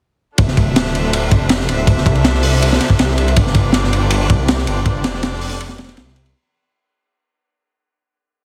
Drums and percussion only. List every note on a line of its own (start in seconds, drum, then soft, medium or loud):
0.38 kick loud
0.38 ride medium
0.48 snare soft
0.57 kick medium
0.57 ride medium
0.76 snare loud
0.76 ride medium
0.85 snare soft
0.95 ride medium
1.13 ride medium
1.31 kick loud
1.31 ride medium
1.49 snare loud
1.49 ride medium
1.60 snare soft
1.69 ride medium
1.87 kick loud
1.87 ride medium
1.98 snare soft
2.06 kick loud
2.06 ride medium
2.15 ride soft
2.24 snare loud
2.24 ride medium
2.35 snare soft
2.43 open hi-hat medium
2.62 ride medium
2.72 snare medium
2.81 snare soft
2.81 ride medium
2.90 kick medium
2.99 snare loud
2.99 ride medium
3.09 snare soft
3.18 ride medium
3.28 ride soft
3.36 kick loud
3.36 ride medium
3.46 snare soft
3.54 kick loud
3.54 ride medium
3.73 snare loud
3.73 ride medium
3.84 snare soft
3.93 ride medium
4.10 ride medium
4.30 kick loud
4.30 ride medium
4.48 snare loud
4.48 ride medium
4.58 snare soft
4.67 ride medium
4.86 kick medium
4.86 ride medium
5.04 snare medium
5.04 ride medium
5.14 snare soft
5.23 snare loud
5.23 ride medium
5.33 snare soft
5.41 open hi-hat medium
5.60 ride medium
5.69 snare medium
5.78 snare medium
5.78 ride medium
5.84 snare medium
5.84 ride medium
5.88 snare loud
5.88 ride medium
5.97 snare loud
5.97 ride medium
6.07 snare soft
6.16 ride medium
6.26 ride soft